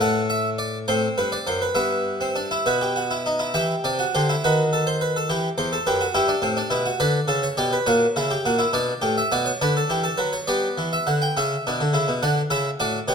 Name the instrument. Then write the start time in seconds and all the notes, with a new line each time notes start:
harpsichord
0.01 A2 A3 F#5
0.30 E5
0.58 D5
0.88 A2 C4 C5
1.18 G2 B4
1.32 D5
1.47 F#2 C5
1.62 B4
1.75 G2 B3 E5
2.21 C4
2.36 D4
2.51 E4
2.66 B2 F#4 B4
2.81 G4
2.96 F#4
3.11 E4
3.26 D#4
3.39 E4
3.54 E3 G4 E5
3.84 C3 D5
3.99 F#4
4.15 D3 G4 C5
4.29 E4
4.44 D#3 F#4 B4
4.73 A4
4.87 C5
5.01 B4
5.16 A4
5.29 E3 G4
5.58 E2 C5
5.73 A4
5.87 F#2 G4 B4
6.01 F#4
6.14 G2 E4 G4
6.28 D4
6.42 A2 C4
6.57 D4
6.70 B2 E4
6.86 F#4
7.00 D3 B4 D5
7.28 C#3 A4
7.43 C#5
7.57 B2 G4 D5
7.73 B4
7.86 A#2 F#4 C#5
8.16 C#3 E4
8.31 G4
8.45 A#2 F#4
8.59 E4
8.73 B2 D4 D5
9.02 A2 G4
9.18 E5
9.32 B2 F#4 D5
9.46 C#5
9.62 D3 D4 B4
9.77 A4
9.90 E3 G4
10.04 A4
10.17 F#3 B4
10.33 C#5
10.47 G3 B3 D5
10.78 E3
10.93 E5
11.07 D3 F#5
11.22 G5
11.37 C#3 C#4 E5
11.67 B2 D4
11.81 D3
11.93 C#3 E4
12.08 B2
12.23 D3 D4 F#5
12.50 C#3 E4 E5
12.80 A2 F#4 D5
13.08 B2 G4 C#5